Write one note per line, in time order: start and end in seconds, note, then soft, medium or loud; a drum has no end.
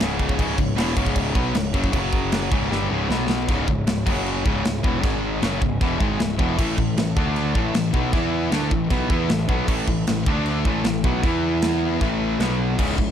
0.00 0.36 C#1 medium
0.00 0.37 C#2 loud
0.00 0.38 G#2 loud
0.00 1.89 C#3 medium
0.00 0.38 C#3 loud
0.00 1.91 G#3 medium
0.00 1.91 E4 medium
0.00 3.05 C#5 medium
0.00 snare loud
0.00 crash medium
0.19 kick medium
0.19 crash medium
0.29 kick medium
0.38 0.57 C#1 loud
0.38 0.57 C#2 loud
0.38 0.58 G#2 loud
0.38 0.58 C#3 loud
0.38 kick loud
0.38 crash medium
0.58 0.76 C#1 medium
0.58 0.74 C#2 medium
0.58 0.74 G#2 medium
0.58 kick medium
0.58 crash medium
0.77 0.95 E1 loud
0.77 0.96 E2 loud
0.77 0.96 B2 loud
0.77 0.97 E3 loud
0.77 snare loud
0.77 crash medium
0.97 1.33 C#1 medium
0.97 1.35 C#2 loud
0.97 1.35 G#2 medium
0.97 1.36 C#3 loud
0.97 kick medium
0.97 crash medium
1.06 kick medium
1.16 kick medium
1.16 crash medium
1.35 1.53 B1 loud
1.35 1.54 B2 medium
1.35 1.54 F#3 medium
1.35 1.54 B3 medium
1.35 kick medium
1.35 crash medium
1.54 1.72 C#1 medium
1.54 1.71 C#2 medium
1.54 1.71 G#2 medium
1.54 snare loud
1.54 crash medium
1.74 1.92 F#1 loud
1.74 1.92 F#2 loud
1.74 1.93 C#3 loud
1.74 1.93 F#3 loud
1.74 kick medium
1.74 crash medium
1.84 kick medium
1.93 2.47 F#1 medium
1.93 2.50 F#2 loud
1.93 3.08 C#3 medium
1.93 2.51 C#3 loud
1.93 2.51 F#3 medium
1.93 2.51 F#3 loud
1.93 2.51 F#4 medium
1.93 kick loud
1.93 crash medium
2.12 kick medium
2.12 crash medium
2.32 snare loud
2.32 crash medium
2.51 2.69 C#1 medium
2.51 2.70 C#2 loud
2.51 2.70 G#2 medium
2.51 2.70 C#3 loud
2.51 3.10 G#3 medium
2.51 3.09 E4 medium
2.51 kick loud
2.51 crash medium
2.71 2.89 G1 medium
2.71 2.90 G2 medium
2.71 2.90 D3 loud
2.71 2.90 G3 loud
2.71 snare medium
2.90 3.08 C#1 medium
2.90 3.09 C#2 medium
2.90 3.09 G#2 medium
2.90 3.09 C#3 medium
3.09 3.45 B1 medium
3.09 3.47 B2 medium
3.09 3.48 B2 loud
3.09 3.48 F#3 medium
3.09 3.48 F#3 loud
3.09 3.48 B3 loud
3.09 3.47 F#4 medium
3.09 3.48 B4 medium
3.09 snare medium
3.30 snare medium
3.48 3.67 C#1 medium
3.48 3.67 C#2 medium
3.48 3.67 G#2 loud
3.48 4.04 C#3 medium
3.48 3.68 C#3 loud
3.48 4.05 G#3 medium
3.48 4.05 E4 medium
3.48 5.01 C#5 medium
3.48 kick loud
3.48 china medium
3.68 3.86 C#1 medium
3.68 3.83 C#2 medium
3.68 3.84 G#2 medium
3.68 kick medium
3.87 4.05 C#1 medium
3.87 4.06 C#2 medium
3.87 4.02 G#2 medium
3.87 snare loud
3.87 china medium
4.05 4.42 F#1 loud
4.05 4.44 F#2 medium
4.05 5.01 C#3 medium
4.05 4.44 C#3 loud
4.05 4.44 F#3 medium
4.05 4.45 F#3 loud
4.05 4.44 F#4 medium
4.05 kick loud
4.05 crash loud
4.26 china medium
4.45 4.63 C#1 medium
4.45 4.62 C#2 medium
4.45 4.63 G#2 medium
4.45 4.64 C#3 medium
4.45 5.41 G#3 medium
4.45 5.02 E4 medium
4.45 kick loud
4.64 4.82 C#1 medium
4.64 4.79 C#2 medium
4.64 4.80 G#2 medium
4.64 snare loud
4.64 china medium
4.83 5.02 E1 loud
4.83 5.03 E2 medium
4.83 5.04 B2 medium
4.83 5.04 E3 loud
4.83 kick loud
5.02 5.39 G#1 medium
5.02 5.41 G#2 medium
5.02 5.41 D#3 medium
5.02 5.42 D#3 loud
5.02 5.42 G#3 loud
5.02 6.56 G#4 medium
5.02 5.41 D#5 medium
5.02 kick loud
5.02 china medium
5.41 5.60 F#1 loud
5.41 5.60 F#2 medium
5.41 5.61 C#3 medium
5.41 7.15 E3 medium
5.41 5.61 F#3 loud
5.41 6.57 C#4 medium
5.41 7.15 E5 medium
5.41 snare loud
5.41 china medium
5.61 5.79 C#1 medium
5.61 5.77 C#2 medium
5.61 5.77 G#2 medium
5.61 kick loud
5.81 5.99 E1 loud
5.81 6.00 E2 medium
5.81 6.00 B2 loud
5.81 6.00 E3 loud
5.81 kick loud
5.81 china medium
6.00 6.18 G#1 medium
6.00 6.19 G#2 medium
6.00 6.19 D#3 medium
6.00 6.20 G#3 medium
6.00 kick loud
6.20 6.38 C#1 medium
6.20 6.35 C#2 medium
6.20 6.36 G#2 medium
6.20 snare loud
6.20 china medium
6.39 6.57 E1 medium
6.39 6.57 E2 medium
6.39 6.58 B2 loud
6.39 6.57 E3 loud
6.39 kick loud
6.58 6.76 A1 medium
6.58 6.77 A2 loud
6.58 6.77 E3 loud
6.58 6.77 A3 loud
6.58 8.13 A3 medium
6.58 8.12 A4 medium
6.58 kick loud
6.58 china medium
6.58 crash loud
6.78 6.96 A1 medium
6.78 6.93 A2 medium
6.78 6.93 E3 medium
6.78 kick medium
6.97 7.15 A1 medium
6.97 7.13 A2 medium
6.97 7.13 E3 medium
6.97 snare loud
6.97 china medium
7.16 7.53 D2 loud
7.16 7.54 D3 medium
7.16 7.55 D3 loud
7.16 7.55 A3 loud
7.16 7.55 D4 loud
7.16 7.54 D5 medium
7.16 kick loud
7.36 china medium
7.54 7.73 A1 medium
7.54 7.73 A2 medium
7.54 10.23 E3 medium
7.54 7.74 E3 loud
7.54 7.74 A3 medium
7.54 8.12 E5 medium
7.54 kick loud
7.74 7.92 A1 medium
7.74 7.90 A2 medium
7.74 7.90 E3 medium
7.74 snare loud
7.74 china medium
7.93 8.12 B1 loud
7.93 8.12 B2 loud
7.93 8.13 F#3 loud
7.93 8.12 B3 loud
7.93 kick loud
8.13 8.49 E2 medium
8.13 8.51 E3 loud
8.13 8.52 B3 medium
8.13 8.51 B3 medium
8.13 8.52 E4 loud
8.13 8.52 B4 medium
8.13 8.52 E5 medium
8.13 kick loud
8.13 china medium
8.51 8.70 D2 medium
8.51 8.70 D3 loud
8.51 8.71 A3 loud
8.51 11.22 A3 medium
8.51 8.71 D4 loud
8.51 10.25 A4 medium
8.51 10.26 E5 medium
8.51 snare loud
8.51 china medium
8.70 8.89 A1 medium
8.70 8.87 A2 medium
8.70 8.87 E3 medium
8.70 kick loud
8.90 9.09 B1 medium
8.90 9.09 B2 medium
8.90 9.09 F#3 medium
8.90 9.09 B3 loud
8.90 kick loud
8.90 china medium
9.09 9.28 E2 medium
9.09 9.28 E3 medium
9.09 9.29 B3 medium
9.09 9.29 E4 medium
9.09 kick loud
9.29 9.47 A1 medium
9.29 9.45 A2 medium
9.29 9.45 E3 medium
9.29 snare loud
9.29 china medium
9.49 9.67 B1 medium
9.49 9.67 B2 medium
9.49 9.67 F#3 medium
9.49 9.68 B3 medium
9.49 kick loud
9.67 9.86 A1 medium
9.67 9.86 A2 loud
9.67 9.87 E3 loud
9.67 9.87 A3 loud
9.67 kick loud
9.67 china medium
9.67 crash loud
9.88 10.06 A1 medium
9.88 10.03 A2 medium
9.88 10.03 E3 medium
9.88 kick medium
10.07 10.25 A1 medium
10.07 10.23 A2 medium
10.07 10.26 E3 medium
10.07 snare loud
10.07 china medium
10.26 10.63 D2 medium
10.26 10.65 D3 loud
10.26 10.65 D3 medium
10.26 10.65 A3 loud
10.26 10.65 D4 loud
10.26 11.23 A4 medium
10.26 10.65 D5 medium
10.26 kick loud
10.46 china medium
10.65 10.83 A1 medium
10.65 10.84 A2 medium
10.65 11.22 E3 medium
10.65 10.85 E3 medium
10.65 10.85 A3 medium
10.65 12.38 E5 medium
10.65 kick loud
10.83 11.02 A1 medium
10.83 11.00 A2 medium
10.83 11.01 E3 medium
10.83 snare loud
10.83 china medium
11.04 11.22 B1 loud
11.04 11.23 B2 loud
11.04 11.23 F#3 loud
11.04 11.23 B3 loud
11.04 kick loud
11.23 11.97 E2 medium
11.23 12.38 E3 medium
11.23 12.01 E3 medium
11.23 12.00 B3 medium
11.23 12.01 B3 loud
11.23 12.01 E4 medium
11.23 12.01 B4 medium
11.23 kick loud
11.23 china medium
11.62 snare loud
11.62 china medium
12.00 12.37 A1 medium
12.00 12.39 A2 medium
12.00 12.40 E3 medium
12.00 12.39 A3 medium
12.00 12.40 A3 loud
12.00 12.39 A4 medium
12.00 kick medium
12.00 china medium
12.39 12.75 B1 medium
12.39 12.78 B2 loud
12.39 12.78 F#3 medium
12.39 12.78 F#3 loud
12.39 12.78 B3 medium
12.39 12.79 B3 loud
12.39 12.79 B4 medium
12.39 12.78 F#5 medium
12.39 snare loud
12.39 china medium
12.77 12.97 C#1 medium
12.77 12.97 C#2 loud
12.77 12.98 G#2 loud
12.77 12.98 C#3 loud
12.77 13.11 E3 medium
12.77 13.11 C#4 medium
12.77 13.11 G#4 medium
12.77 13.11 E5 medium
12.77 kick loud
12.77 crash loud
12.77 china medium
12.98 13.11 C#1 medium
12.98 13.11 C#2 medium
12.98 13.11 G#2 medium
12.98 kick medium